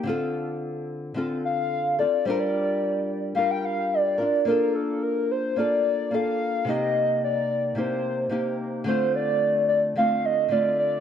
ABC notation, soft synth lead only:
X:1
M:4/4
L:1/16
Q:1/4=109
K:Bb
V:1 name="Soft synth lead"
z8 z2 f4 d2 | c d6 z f g f2 d4 | B2 A2 B2 c2 d4 f4 | e4 d4 c6 z2 |
c2 d4 d2 f2 e2 d2 d2 |]